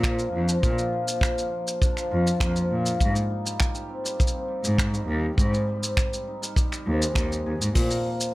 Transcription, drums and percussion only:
0.03 finger snap, kick, shaker
0.19 shaker
0.48 shaker
0.63 kick, shaker
0.78 shaker
1.08 shaker
1.21 finger snap, kick, shaker
1.38 shaker
1.67 shaker
1.82 kick, shaker
1.97 finger snap, shaker
2.27 shaker
2.40 finger snap, kick, shaker
2.56 shaker
2.86 shaker
3.00 kick, shaker
3.16 shaker
3.46 shaker
3.60 finger snap, kick, shaker
3.75 shaker
4.06 shaker
4.20 kick, shaker
4.27 shaker
4.64 shaker
4.78 finger snap, kick, shaker
4.94 shaker
5.38 kick, shaker
5.54 shaker
5.83 shaker
5.97 finger snap, kick, shaker
6.13 shaker
6.43 shaker
6.56 kick, shaker
6.72 finger snap, shaker
7.02 shaker
7.15 finger snap, kick, shaker
7.32 shaker
7.62 shaker
7.75 kick, open hi-hat, shaker
7.90 open hi-hat, shaker
8.21 shaker

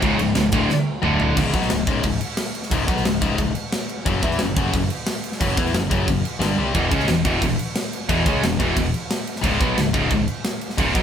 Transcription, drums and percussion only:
0.02 kick, ride
0.19 ride
0.35 snare, ride
0.52 kick, ride
0.70 snare
1.03 mid tom
1.20 floor tom
1.37 kick, crash
1.54 kick, crash
1.62 snare
1.70 snare, crash
1.87 kick, crash
2.03 kick, crash
2.21 crash
2.37 snare, crash
2.55 crash
2.63 snare
2.71 kick, crash
2.88 kick, crash
2.97 snare
3.05 snare, crash
3.22 kick, crash
3.38 kick, crash
3.55 crash
3.72 snare, crash
3.89 crash
4.06 kick, crash
4.23 kick, crash
4.31 snare
4.39 snare, crash
4.57 kick, crash
4.73 kick, crash
4.90 crash
5.06 snare, crash
5.24 crash
5.32 snare
5.41 kick, crash
5.57 kick, crash
5.66 snare
5.74 snare, crash
5.91 kick, crash
6.08 kick, crash
6.25 crash
6.42 snare, crash
6.58 high tom
6.75 kick, crash
6.92 kick, crash
7.00 snare
7.08 snare, crash
7.25 kick, crash
7.42 kick, crash
7.59 crash
7.75 snare, crash
7.93 crash
8.09 kick, crash
8.26 kick, crash
8.43 snare, crash
8.60 kick, crash
8.77 kick, crash
8.94 crash
9.11 snare, crash
9.27 crash
9.36 snare
9.44 kick, crash
9.61 kick, crash
9.78 snare, crash
9.94 kick, crash
10.11 kick, crash
10.28 crash
10.44 snare, crash
10.61 crash
10.70 snare
10.78 kick, crash
10.95 kick, crash

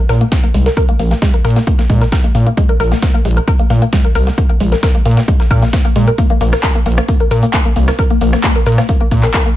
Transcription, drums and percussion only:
0.09 closed hi-hat, open hi-hat
0.21 closed hi-hat
0.32 kick, snare, closed hi-hat
0.44 closed hi-hat
0.54 closed hi-hat, open hi-hat
0.66 snare, closed hi-hat
0.77 kick, closed hi-hat
0.89 closed hi-hat
0.99 closed hi-hat, open hi-hat
1.11 snare, closed hi-hat
1.22 kick, snare, closed hi-hat
1.34 closed hi-hat
1.45 closed hi-hat, open hi-hat
1.50 closed hi-hat
1.56 snare, closed hi-hat
1.67 kick, closed hi-hat
1.79 snare, closed hi-hat
1.90 kick, closed hi-hat, open hi-hat
2.01 snare, closed hi-hat
2.12 kick, snare, closed hi-hat
2.24 closed hi-hat
2.35 closed hi-hat, open hi-hat
2.47 closed hi-hat
2.57 kick, closed hi-hat
2.69 closed hi-hat
2.80 closed hi-hat, open hi-hat
2.92 snare, closed hi-hat
3.02 kick, snare, closed hi-hat
3.14 closed hi-hat
3.25 closed hi-hat, open hi-hat
3.31 closed hi-hat
3.37 closed hi-hat
3.48 kick, closed hi-hat
3.59 closed hi-hat
3.70 closed hi-hat, open hi-hat
3.82 closed hi-hat
3.93 kick, snare, closed hi-hat
4.05 closed hi-hat
4.15 closed hi-hat, open hi-hat
4.27 snare, closed hi-hat
4.38 kick, closed hi-hat
4.50 closed hi-hat
4.60 closed hi-hat, open hi-hat
4.72 snare, closed hi-hat
4.83 kick, snare, closed hi-hat
4.95 closed hi-hat
5.06 closed hi-hat, open hi-hat
5.11 closed hi-hat
5.17 snare, closed hi-hat
5.28 kick, closed hi-hat
5.40 snare, closed hi-hat
5.51 kick, closed hi-hat, open hi-hat
5.62 snare, closed hi-hat
5.73 kick, snare, closed hi-hat
5.85 closed hi-hat
5.96 closed hi-hat, open hi-hat
6.08 closed hi-hat
6.18 kick, closed hi-hat, shaker
6.30 closed hi-hat
6.41 closed hi-hat, open hi-hat, shaker
6.53 cross-stick, snare, closed hi-hat, shaker
6.63 kick, snare, clap, closed hi-hat, shaker
6.75 closed hi-hat
6.86 closed hi-hat, open hi-hat, shaker
6.92 closed hi-hat
6.98 cross-stick, closed hi-hat, shaker
7.08 kick, closed hi-hat, shaker
7.20 closed hi-hat
7.31 closed hi-hat, open hi-hat, shaker
7.43 closed hi-hat, shaker
7.54 kick, snare, clap, closed hi-hat, shaker
7.65 closed hi-hat
7.76 closed hi-hat, open hi-hat, shaker
7.88 cross-stick, snare, closed hi-hat, shaker
7.99 kick, closed hi-hat, shaker
8.10 closed hi-hat
8.21 closed hi-hat, open hi-hat, shaker
8.33 cross-stick, snare, closed hi-hat, shaker
8.44 kick, snare, clap, closed hi-hat, shaker
8.56 closed hi-hat
8.66 closed hi-hat, open hi-hat, shaker
8.72 closed hi-hat
8.78 cross-stick, snare, closed hi-hat, shaker
8.89 kick, closed hi-hat, shaker
9.01 closed hi-hat
9.11 kick, closed hi-hat, open hi-hat, shaker
9.23 snare, clap, closed hi-hat, shaker
9.34 kick, snare, clap, closed hi-hat, shaker
9.46 closed hi-hat

